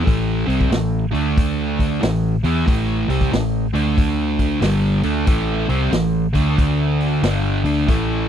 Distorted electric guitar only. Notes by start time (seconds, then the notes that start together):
0.04 A2 E3 A3
0.47 C3 G3 C4
0.71 A2 E3
1.11 D3 A3 D4
2.01 A2 E3
2.44 E3 B3 E4
2.66 A2 E3 A3
3.09 C3 G3 C4
3.32 A2 E3
3.73 D3 A3 D4
4.61 G2 D3 G3
5.03 D3 A3 D4
5.27 A2 E3 A3
5.69 C3 G3 C4
5.92 A2 E3
6.33 D3 A3 D4
7.23 G2 D3 G3
7.64 D3 A3 D4
7.88 A2 E3 A3